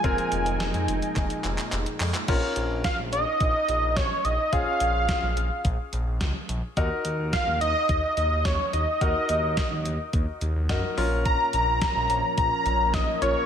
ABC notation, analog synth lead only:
X:1
M:4/4
L:1/8
Q:1/4=107
K:Bbm
V:1 name="Analog synth lead"
a6 z2 | z2 f e3 d e | f4 z4 | z2 f e2 e d e- |
e4 z4 | b b b2 b2 e d |]